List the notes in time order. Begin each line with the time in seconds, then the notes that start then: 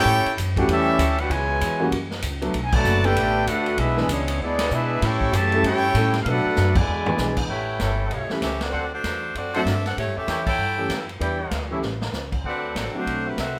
Already playing: C#4 E4 G4 A4 C#5 G5
0.05 A2
0.26 muted upright bass stroke, ride
0.37 F#2, kick, hi-hat pedal, ride
0.56 E3 G3 A3 C#4 D4 F#4 G4 B4 F#5, kick, ride
0.68 E2 G3 C#4 E4 G4 A4 E5, kick, ride
0.98 D2, kick, hi-hat pedal, ride
1.18 D4 F#4 G4 B4 F#5, ride
1.30 C#2 B2 E3 G#3 E4 B4 C#5 G#5, kick, ride
1.61 E2, kick, hi-hat pedal, ride
1.80 E3 G3 A#3 C#4 F#4
1.92 F#2, kick, ride
2.11 snare
2.22 C#2, kick, hi-hat pedal, ride
2.41 F#3 A3 B3 D4 A4, ride
2.53 B1, kick, ride
2.64 G#5
2.72 D3 F#3 A3 F#4 B4 D5 A5, kick, crash
2.85 F#1, hi-hat pedal
3.04 D3 A3 B3 D4 G4 A4 B4 G5, ride
3.16 A1, kick, ride
3.47 D2 A3 D4 F#4 A4 B4 F#5, kick, hi-hat pedal, ride
3.66 ride
3.78 B1 G#3 B3 D4 E4 G#4 B4 E5, kick, ride
3.97 E3 G#3 B3 D4 G#4, snare
4.08 C#2 G#3 B3 C#4 D4 E4 G#4 C#5, kick, hi-hat pedal, ride
4.28 ride
4.40 D2 G#3 B3 D4 E4 G#4 D5, kick
4.58 snare, ride
4.71 B2 G#3 B3 D4 E4 G#4 B4, kick, hi-hat pedal
4.75 E5
5.02 A2 C#4 E4 G4 A4 C#5 G5, kick, snare, ride
5.21 kick
5.32 F#2 C#3 E3 A3 G4 E5 A5, kick, hi-hat pedal, ride
5.36 C#5
5.52 G3 A3 C#4 E4 A4, ride
5.63 G2 C#4 E4 G4 A4 C#5 G5, kick, ride
5.94 A2 G3 A3 C#4 E4 A4, kick, hi-hat pedal, ride
6.13 snare, ride
6.22 B2 F5, kick, ride
6.27 F#3 A3 B3 D4 F#4 A4 B4 F#5
6.45 muted upright bass stroke
6.56 F#2, snare, hi-hat pedal
6.75 B2 D3 G#3 E4 B4 D5 G#5, kick, crash
6.88 E2
7.06 E3 G#3 B3 D4 G#4, floor tom
7.18 B1, snare, hi-hat pedal
7.37 kick, crash
7.47 A1 A3 E4 G4 A4 B4 C#5 G5, kick
7.79 G1 G3 C#4 E4 A4, kick, snare, hi-hat pedal, ride
8.11 B1 A3 E4 G4 C#5, kick, ride
8.30 E3 G3 A3 C#4 E4 G4 B4, muted upright bass stroke, snare
8.41 C#2 C#4 G4 A4 E5, kick, snare, hi-hat pedal, ride
8.61 C4 F#4 A4 D5, snare, ride
8.72 D2 D4 A4 C5 F#5
8.93 A3 D4 F#4 C5
9.04 E2, kick, snare, hi-hat pedal, ride
9.35 F#2 C4 F#4 A4 D5, kick, ride
9.54 D3 F#3 A3 C4 D4 F#4 A4 C5 E5 F#5, ride
9.65 G2, kick, snare, hi-hat pedal, ride
9.85 D4 A4 C5 F#5, snare, ride
9.97 A2 A3 E4 G4 C#5, kick, ride
10.06 G2
10.16 E2 C#4 G4 A4 E5
10.27 E2 E4 A4 C#5 G5, kick, snare, hi-hat pedal, ride
10.46 E4 A4 C#5 G5, kick, crash
10.58 G2
10.78 E3 G3 A3 C#4 G4
10.89 F#2, kick, snare, hi-hat pedal, ride
11.09 ride
11.19 E2 E3 G3 B3 D4 E4 G4 B4 D5 G5, kick, ride
11.51 D2, kick, snare, hi-hat pedal, ride
11.70 E3 G3 A3 C#4 E4 G4 A4 C#5 E5
11.82 A1, snare
12.02 snare
12.13 C#2, snare, hi-hat pedal
12.32 kick, crash
12.44 D2 A3 C4 D4 F#4 A4 B4 F#5, kick
12.75 A1 F#3 C4 D4 A4, kick, snare, hi-hat pedal, ride
12.94 D3 F#3 A3 C4 D4 F#4, muted upright bass stroke
12.98 C5
13.06 B1, kick, ride
13.28 G3 C4 E4 B4
13.37 C2 C4 F#4 A4 E5, kick, snare, hi-hat pedal, ride